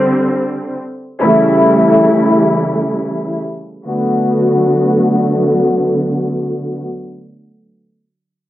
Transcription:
Already playing: D3 G3 C4
1.20 C#3 E3 G3 A3 E4
3.87 D3 F#3 A3 B3 F#4

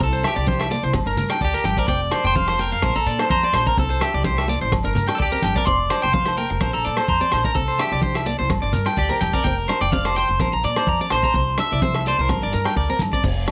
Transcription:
0.00 C2 C4 A4, kick, muted conga
0.13 C5
0.23 D4 E5, cross-stick, closed hi-hat, muted conga, low agogo
0.27 G4
0.36 C2 D5
0.46 C4 C5, kick, high conga
0.60 E5, cross-stick, low agogo
0.71 A#3 D5, closed hi-hat
0.83 C2 C5
0.94 G1 C4, kick, cross-stick, muted conga, high conga, low agogo
1.06 G1 D4 A#4
1.17 G2 A#4, closed hi-hat, low conga
1.30 D4 G5, cross-stick, low agogo
1.41 D2 G4 D5, kick
1.54 A#4
1.64 G1 G5, closed hi-hat, muted conga, high conga, low agogo
1.77 C4 A#4 D5, kick
1.88 F1 C4 D5 G5, kick, muted conga
2.11 D4 C5, cross-stick, closed hi-hat, muted conga, low agogo
2.24 F1 C5 G5
2.35 C4 F5, kick, high conga
2.48 C5, cross-stick, low agogo
2.59 A#3 A#4 G5, closed hi-hat
2.72 F2 F5
2.82 A#1 C4 C5, kick, cross-stick, muted conga, high conga, low agogo
2.95 A#1 D4 A4 A#5
3.06 A#2 D5, closed hi-hat
3.19 D4 C5, cross-stick, low agogo
3.30 F2 C5 A#5, kick, high conga
3.43 C4 D5
3.53 A#1 C5, cross-stick, closed hi-hat, muted conga, low agogo
3.67 C4 A#4 A#5, kick
3.77 C2 C4 A4, kick, muted conga
3.90 C5
4.01 D4 G4 E5, cross-stick, closed hi-hat, muted conga, low agogo
4.14 C2 D5
4.24 C4 C5, kick, high conga
4.38 E5, cross-stick, low agogo
4.48 A#3 D5, closed hi-hat
4.61 A1 C5
4.72 G1 C4, kick, cross-stick, muted conga, high conga, low agogo
4.84 G1 D4 A#4
4.95 G2 A#4, closed hi-hat, low conga
5.08 D4 G5, cross-stick, low agogo
5.15 A4 D5
5.20 D2 G4, kick
5.32 C4 A#4
5.42 G1 G5, closed hi-hat, muted conga, high conga, low agogo
5.56 C4 A#4 D5, kick
5.66 F1 C4 D5 C6, kick, muted conga
5.90 D4 C5, cross-stick, closed hi-hat, muted conga, low agogo
6.02 F1 C5 G5
6.13 C4 F5, kick, high conga
6.26 C5, cross-stick, low agogo
6.37 A#3 A#4 G5, closed hi-hat
6.50 F1, muted clean electric guitar stroke
6.61 A#1 C4 C5, kick, cross-stick, muted conga, high conga, low agogo
6.73 A#1 D4 A4 A#5
6.85 A#2 D5, closed hi-hat
6.97 C5, muted steel-string acoustic guitar stroke, cross-stick, low agogo
7.08 F2 C5 A#5, kick, high conga
7.21 C4 D5
7.31 A#1 C5, cross-stick, closed hi-hat, muted conga, low agogo
7.45 D4 A#4 A#5, kick
7.55 C2 C4 A4, kick, muted conga
7.68 C5
7.78 D4 G4 E5, cross-stick, closed hi-hat, muted conga, low agogo
7.92 C2 D5
8.02 D4 C5, kick, high conga
8.15 E5, cross-stick, low agogo
8.26 A#3 D5, closed hi-hat
8.39 C2 C5
8.50 G1 C4, kick, cross-stick, muted conga, high conga, low agogo
8.62 G1 D4 D5
8.73 G2 A#4, closed hi-hat, low conga
8.86 G5, muted steel-string acoustic guitar stroke, cross-stick, low agogo
8.97 D2 G4 D5, kick
9.09 C4 A#4
9.21 E1 G5, closed hi-hat, muted conga, high conga, low agogo
9.33 C4 A#4 D5, kick
9.44 F1 C4 G5, kick, muted conga
9.68 D4 C5, cross-stick, closed hi-hat, muted conga, low agogo
9.81 F1 D5 G5
9.92 C4 F5, kick, high conga
10.05 C5, cross-stick, low agogo
10.16 F4 C5 G5, closed hi-hat
10.29 F1
10.40 A#1 C4 A#4 C5, kick, cross-stick, muted conga, high conga, low agogo
10.53 A#1 D4 A#5
10.64 A#2 D5, closed hi-hat
10.76 D4 C5, cross-stick, low agogo
10.87 F2 A#5, kick, high conga
11.01 C4 D5
11.10 A#1 C5, cross-stick, closed hi-hat, muted conga, low agogo
11.23 C4 A#5, kick
11.34 C2 C4, kick, muted conga
11.58 D4 E5, cross-stick, closed hi-hat, muted conga, low agogo
11.72 C2 D5
11.82 C4 C5, kick, high conga, low conga
11.95 E5, cross-stick, low agogo
12.06 A#3 C5 D5, closed hi-hat
12.19 C2 A#4 C5
12.29 G1 C4, kick, cross-stick, muted conga, high conga, low agogo
12.42 G1 D4 D5
12.53 G2 A#4, closed hi-hat
12.65 D4 G5, cross-stick, low agogo
12.76 D2 D5, kick
12.90 C4 A#4
12.99 G1, closed hi-hat, muted conga, high conga, low agogo
13.13 C4 D5, kick
13.23 F1 C4, kick, crash, muted conga
13.48 D4, cross-stick, closed hi-hat, low agogo

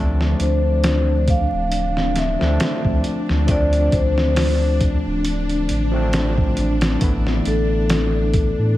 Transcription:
Already playing: D2 F3 A3 C4 D4
0.21 snare
0.40 D2 C5, closed hi-hat
0.84 snare, closed hi-hat
1.28 F5, kick, closed hi-hat
1.53 D1
1.72 closed hi-hat
1.97 snare
2.16 E5, snare, closed hi-hat
2.39 D2 F3 A3 C4, snare
2.44 D4
2.60 snare, closed hi-hat
2.85 D2, kick
3.04 closed hi-hat
3.29 D2, snare
3.47 F3 A3 C4 D5, kick, closed hi-hat
3.51 D4
3.73 closed hi-hat
3.92 D2 C5, kick, closed hi-hat
4.18 snare
4.36 snare, open hi-hat
4.81 kick, closed hi-hat
5.06 D1
5.25 closed hi-hat
5.49 closed hi-hat
5.69 A1, closed hi-hat
5.91 F3 A3 C4
5.96 D4
6.13 snare, closed hi-hat
6.38 kick
6.57 A1, closed hi-hat
6.81 snare, closed hi-hat
6.99 A1 E3 A3 B3, kick, closed hi-hat
7.03 E4
7.27 snare
7.45 A1 A4, closed hi-hat
7.89 snare, closed hi-hat
8.34 kick, closed hi-hat
8.59 A2

